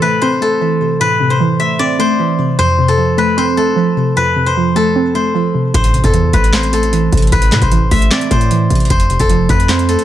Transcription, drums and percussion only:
5.74 kick loud
5.74 closed hi-hat medium
5.84 closed hi-hat medium
5.94 closed hi-hat medium
6.04 kick medium
6.04 closed hi-hat medium
6.14 closed hi-hat medium
6.33 kick medium
6.33 closed hi-hat medium
6.44 closed hi-hat medium
6.53 snare loud
6.53 clap medium
6.53 closed hi-hat medium
6.63 closed hi-hat medium
6.73 closed hi-hat medium
6.83 closed hi-hat medium
6.93 closed hi-hat medium
7.12 kick loud
7.12 closed hi-hat medium
7.17 closed hi-hat medium
7.22 closed hi-hat medium
7.27 closed hi-hat medium
7.32 kick loud
7.32 closed hi-hat medium
7.42 closed hi-hat medium
7.52 snare loud
7.52 clap medium
7.52 closed hi-hat medium
7.62 kick medium
7.62 closed hi-hat medium
7.72 closed hi-hat medium
7.91 kick medium
7.91 open hi-hat medium
8.02 closed hi-hat medium
8.11 snare loud
8.11 clap medium
8.11 closed hi-hat medium
8.21 closed hi-hat medium
8.31 kick medium
8.31 closed hi-hat medium
8.41 closed hi-hat medium
8.51 closed hi-hat medium
8.70 closed hi-hat medium
8.75 closed hi-hat medium
8.80 closed hi-hat medium
8.85 closed hi-hat medium
8.90 kick loud
8.90 closed hi-hat medium
9.00 closed hi-hat medium
9.10 closed hi-hat medium
9.19 kick medium
9.19 closed hi-hat medium
9.29 closed hi-hat medium
9.49 kick loud
9.49 closed hi-hat medium
9.60 closed hi-hat medium
9.69 snare loud
9.69 clap medium
9.69 closed hi-hat medium
9.79 closed hi-hat medium
9.89 closed hi-hat medium
9.99 closed hi-hat medium

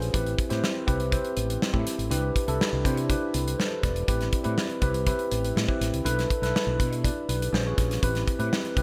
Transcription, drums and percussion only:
0.02 closed hi-hat soft
0.14 kick medium
0.14 closed hi-hat medium
0.26 closed hi-hat soft
0.39 kick medium
0.39 closed hi-hat medium
0.50 snare soft
0.50 closed hi-hat soft
0.64 snare medium
0.88 kick medium
0.88 closed hi-hat medium
1.00 closed hi-hat soft
1.12 kick medium
1.12 closed hi-hat medium
1.25 closed hi-hat soft
1.37 closed hi-hat medium
1.50 closed hi-hat soft
1.62 snare loud
1.74 kick medium
1.87 snare soft
1.87 closed hi-hat medium
1.99 closed hi-hat soft
2.11 closed hi-hat medium
2.36 kick medium
2.36 closed hi-hat medium
2.48 closed hi-hat soft
2.61 snare loud
2.85 kick medium
2.85 closed hi-hat medium
2.97 closed hi-hat soft
3.10 kick medium
3.10 closed hi-hat medium
3.34 closed hi-hat medium
3.48 closed hi-hat soft
3.60 snare medium
3.83 kick medium
3.83 snare soft
3.83 closed hi-hat medium
3.96 closed hi-hat soft
4.08 kick medium
4.08 closed hi-hat medium
4.21 snare soft
4.21 closed hi-hat soft
4.33 kick medium
4.33 closed hi-hat medium
4.44 closed hi-hat soft
4.58 snare medium
4.70 closed hi-hat soft
4.82 kick medium
4.82 closed hi-hat medium
4.94 closed hi-hat soft
5.07 kick medium
5.07 closed hi-hat medium
5.19 closed hi-hat soft
5.32 closed hi-hat medium
5.45 closed hi-hat soft
5.57 snare loud
5.69 kick medium
5.81 snare soft
5.81 closed hi-hat medium
5.94 closed hi-hat soft
6.06 closed hi-hat medium
6.19 snare soft
6.19 closed hi-hat soft
6.30 kick medium
6.30 closed hi-hat medium
6.43 snare soft
6.43 closed hi-hat soft
6.56 snare loud
6.80 kick medium
6.80 closed hi-hat medium
6.93 closed hi-hat soft
7.04 kick medium
7.04 closed hi-hat medium
7.29 closed hi-hat medium
7.42 closed hi-hat soft
7.54 snare loud
7.78 kick medium
7.78 snare soft
7.78 closed hi-hat medium
7.91 snare soft
7.91 closed hi-hat soft
8.03 kick loud
8.03 closed hi-hat medium
8.15 snare soft
8.15 closed hi-hat soft
8.28 kick medium
8.28 closed hi-hat medium
8.40 closed hi-hat soft
8.53 snare loud
8.65 closed hi-hat soft
8.77 kick medium
8.77 closed hi-hat medium

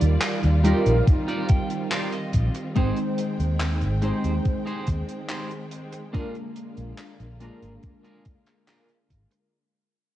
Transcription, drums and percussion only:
0.01 closed hi-hat medium
0.21 clap loud
0.21 closed hi-hat medium
0.43 closed hi-hat soft
0.64 closed hi-hat medium
0.86 closed hi-hat medium
1.07 kick loud
1.07 closed hi-hat medium
1.28 closed hi-hat soft
1.49 kick loud
1.49 closed hi-hat loud
1.70 closed hi-hat medium
1.91 clap loud
1.91 closed hi-hat medium
2.12 closed hi-hat soft
2.33 kick medium
2.33 closed hi-hat medium
2.54 closed hi-hat medium
2.75 kick loud
2.75 closed hi-hat medium
2.96 closed hi-hat soft
3.18 closed hi-hat loud
3.40 closed hi-hat medium
3.60 clap loud
3.60 closed hi-hat medium
3.81 closed hi-hat soft
4.02 closed hi-hat medium
4.24 closed hi-hat medium
4.45 kick loud
4.45 closed hi-hat medium
4.67 closed hi-hat soft
4.87 kick medium
4.87 closed hi-hat loud
5.09 closed hi-hat medium
5.29 clap loud
5.29 closed hi-hat medium
5.51 closed hi-hat soft
5.71 closed hi-hat medium
5.92 closed hi-hat medium
6.14 kick loud
6.14 closed hi-hat medium
6.35 closed hi-hat soft
6.56 closed hi-hat loud
6.77 closed hi-hat medium
6.98 clap loud
6.98 closed hi-hat medium
7.20 closed hi-hat soft
7.40 closed hi-hat medium
7.62 closed hi-hat medium
7.83 kick loud
7.83 closed hi-hat medium
8.04 closed hi-hat soft
8.25 kick loud
8.25 closed hi-hat medium
8.46 clap soft
8.46 closed hi-hat medium
8.67 clap loud
8.67 closed hi-hat medium
8.88 closed hi-hat soft
9.10 kick medium
9.10 closed hi-hat loud
9.31 closed hi-hat medium

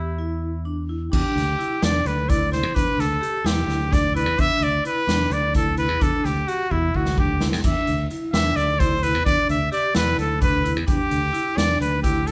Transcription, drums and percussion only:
1.13 kick loud
1.13 crash medium
1.37 snare soft
1.37 closed hi-hat medium
1.60 closed hi-hat medium
1.82 snare loud
1.82 closed hi-hat medium
2.06 closed hi-hat medium
2.29 kick loud
2.29 closed hi-hat medium
2.53 snare soft
2.53 closed hi-hat medium
2.76 kick medium
2.76 closed hi-hat medium
3.00 snare soft
3.00 closed hi-hat medium
3.23 closed hi-hat medium
3.46 snare loud
3.46 closed hi-hat medium
3.70 snare soft
3.70 closed hi-hat medium
3.93 kick loud
3.93 snare soft
3.93 closed hi-hat medium
4.16 closed hi-hat medium
4.38 kick loud
4.38 closed hi-hat medium
4.62 closed hi-hat medium
4.85 closed hi-hat medium
5.09 snare loud
5.09 closed hi-hat medium
5.31 closed hi-hat medium
5.54 kick loud
5.54 closed hi-hat medium
5.77 closed hi-hat medium
6.01 kick loud
6.01 closed hi-hat medium
6.25 snare soft
6.25 closed hi-hat medium
6.48 closed hi-hat medium
6.71 kick medium
6.94 kick medium
7.06 snare medium
7.18 kick loud
7.41 snare medium
7.52 snare medium
7.64 kick loud
7.64 closed hi-hat medium
7.64 crash medium
7.87 closed hi-hat medium
8.10 closed hi-hat medium
8.34 snare loud
8.34 closed hi-hat medium
8.57 closed hi-hat medium
8.80 kick loud
8.80 closed hi-hat medium
9.03 closed hi-hat medium
9.26 kick loud
9.26 closed hi-hat medium
9.49 closed hi-hat medium
9.72 closed hi-hat medium
9.95 snare loud
9.95 closed hi-hat medium
10.19 closed hi-hat medium
10.41 kick loud
10.41 closed hi-hat medium
10.65 closed hi-hat medium
10.87 kick loud
10.87 closed hi-hat medium
11.11 closed hi-hat medium
11.34 closed hi-hat medium
11.58 snare loud
11.58 closed hi-hat medium
11.81 closed hi-hat medium
12.04 kick loud
12.04 closed hi-hat medium
12.27 closed hi-hat medium

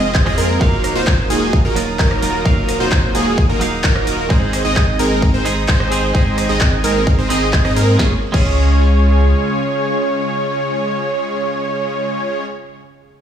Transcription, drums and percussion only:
0.15 kick loud
0.15 clap loud
0.26 cross-stick medium
0.38 open hi-hat loud
0.61 kick loud
0.61 ride medium
0.84 cross-stick medium
0.84 open hi-hat loud
0.84 ride medium
1.07 kick loud
1.07 clap loud
1.07 ride medium
1.30 open hi-hat loud
1.30 ride medium
1.53 kick loud
1.53 ride medium
1.76 open hi-hat loud
1.76 ride medium
1.99 kick loud
1.99 clap loud
1.99 ride medium
2.11 cross-stick medium
2.22 open hi-hat loud
2.22 ride medium
2.45 kick loud
2.45 ride medium
2.69 cross-stick medium
2.69 open hi-hat loud
2.69 ride medium
2.92 kick loud
2.92 clap loud
2.92 ride medium
3.15 open hi-hat loud
3.15 ride medium
3.38 kick loud
3.38 ride medium
3.61 open hi-hat loud
3.61 ride medium
3.84 kick loud
3.84 clap loud
3.96 cross-stick medium
4.07 open hi-hat loud
4.07 ride medium
4.30 kick loud
4.30 ride medium
4.53 cross-stick medium
4.53 open hi-hat loud
4.53 ride medium
4.76 kick loud
4.76 clap loud
4.76 ride medium
4.99 open hi-hat loud
4.99 ride medium
5.22 kick loud
5.22 ride medium
5.46 open hi-hat loud
5.46 ride medium
5.68 kick loud
5.68 clap loud
5.68 ride medium
5.80 cross-stick medium
5.92 open hi-hat loud
5.92 ride medium
6.15 kick loud
6.15 ride medium
6.38 cross-stick medium
6.38 open hi-hat loud
6.38 ride medium
6.61 kick loud
6.61 clap loud
6.61 ride medium
6.84 open hi-hat loud
6.84 ride medium
7.07 kick loud
7.07 ride medium
7.30 open hi-hat loud
7.30 ride medium
7.53 kick loud
7.53 clap loud
7.53 ride medium
7.65 cross-stick medium
7.76 open hi-hat loud
7.76 ride medium
7.99 kick loud
7.99 snare medium
8.34 kick loud
8.34 crash medium

